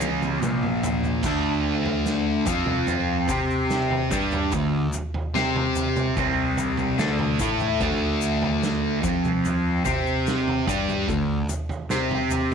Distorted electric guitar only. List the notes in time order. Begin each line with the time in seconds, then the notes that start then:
Already playing: C#3 G#3 C#4
0.42 A#2 F3 A#3
1.25 D3 A3 D4
2.47 F3 C4 F4
3.30 C4 G4 C5
4.12 G3 D4 G4
4.53 D3 A3
5.34 C4 G4 C5
6.17 C3 G3 C4
6.98 D3 A3 D4
7.41 A3 E4 A4
7.81 D3 A3 D4
9.03 F3 C4 F4
9.85 C4 G4 C5
10.67 G3 D4 G4
11.10 D3 A3
11.91 C4 G4 C5